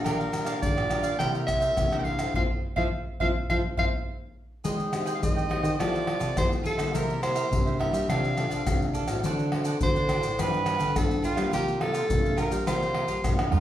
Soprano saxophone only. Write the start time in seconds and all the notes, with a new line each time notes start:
0.05 A#4
0.62 D5
1.19 G5
1.47 E5
1.99 G5
2.04 F5
2.36 F5
2.77 F5
3.21 F5
3.50 F5
3.79 F5
5.15 F5
5.23 D#5
5.80 D5
6.38 C5
6.67 A4
6.96 A#4
7.23 C5
7.80 E5
8.10 F5
9.83 C5
10.41 B4
10.97 A4
11.25 F4
11.54 G4
11.81 A4
12.39 A#4
12.68 C5